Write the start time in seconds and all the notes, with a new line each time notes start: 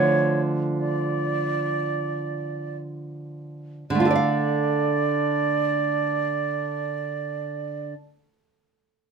Already playing: D3 F3 A3 C#5
0.76 D5
3.89 D3 D5
3.95 A3
4.00 F4
4.05 A4
4.10 D5
4.15 F5